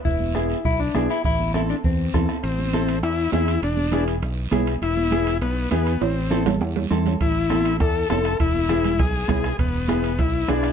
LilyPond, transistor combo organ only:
\new Staff \with { instrumentName = "Transistor combo organ" } { \time 4/4 \key a \minor \tempo 4 = 201 r1 | r1 | c'2 e'4 e'4 | d'4. r2 r8 |
e'2 b4 b4 | c'4. r2 r8 | e'2 a'4 a'4 | e'2 gis'4 gis'4 |
b2 e'4 d'4 | }